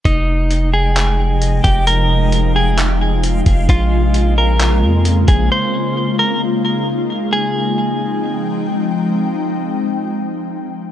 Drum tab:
HH |x-x-x-xx|x-x-x-xx|x-x-x-xx|--------|
CP |----x---|----x---|----x---|--------|
BD |o------o|-------o|o------o|--------|

HH |--------|--------|
CP |--------|--------|
BD |--------|--------|